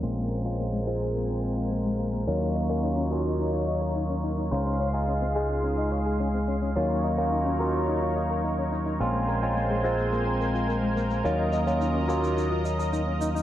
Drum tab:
SH |------x---x---x-|x-xxx-xxx-xxx-xx|x-xxx-xxx-xxx-xx|x-xxx-xxx-xxx-xx|

SH |x-xxx-xxx-xxx-xx|x-xxx-xxx-xxx-xx|